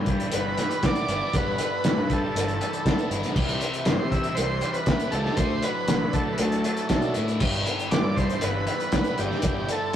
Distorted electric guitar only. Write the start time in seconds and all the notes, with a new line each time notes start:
Already playing: G2 D3 E3
0.09 G3
0.33 E3
0.59 G3
0.83 B3
1.09 E4
1.35 G2
1.60 D3
1.86 E3
2.12 G3
2.36 E3
2.61 G3
2.86 B3
3.11 E4
3.37 C3
3.63 E3
3.87 E3
4.12 G3
4.36 E3
4.62 G3
4.88 E4
5.12 G4
5.38 D3
5.63 F#3
5.89 F#3
6.13 A3
6.37 F#3
6.64 A3
6.89 D4
7.16 E4
7.41 G2
7.67 D3
7.92 E3
8.18 G3
8.43 E3
8.69 G3
8.93 B3
9.18 E4
9.44 G2
9.69 D3